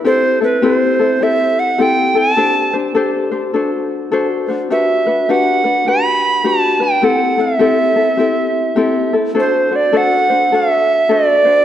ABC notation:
X:1
M:4/4
L:1/8
Q:"Swing" 1/4=103
K:Dmix
V:1 name="Recorder"
c B c2 e f g a- | a z6 z | e2 f2 b2 a g | f e6 z |
c d f2 e2 d2 |]
V:2 name="Ukulele"
[CEGA] [CEA] [CEGA] [CEA] [CEGA]2 [CEGA] [CEA] | [DGAc] [DGc] [DGAc] [DGc] [DFAc]2 [DFAc] [DFc] | [DFGB] [DFB] [DFGB] [DFB] [DFGB]2 [DFGB] [DFB] | [CEGA] [CEA] [CEGA] [CEA] [CEGA]2 [CEGA] [CEA] |
[DFAc] [DFc] [DFAc] [DFc] [DFAc]2 [DFAc] [DFc] |]